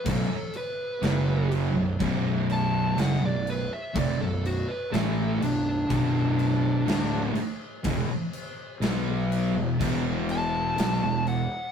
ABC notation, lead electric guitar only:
X:1
M:4/4
L:1/16
Q:1/4=62
K:Bm
V:1 name="Lead electric guitar"
A2 B4 z4 a2 f d B e | d A F B A2 D8 z2 | z8 z2 a4 f2 |]